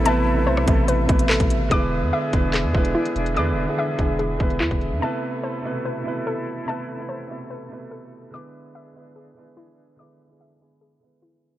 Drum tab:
HH |x-----x-x-xx-xx-|x-----x-x--x-xxx|x-----x-x-xx-xx-|----------------|
CP |------------x---|--------x-------|------------x---|----------------|
SD |-----r----------|----------------|----------------|----------------|
BD |------o---o--o--|o-----o---o-----|------o---o--o--|----------------|

HH |----------------|----------------|----------------|
CP |----------------|----------------|----------------|
SD |----------------|----------------|----------------|
BD |----------------|----------------|----------------|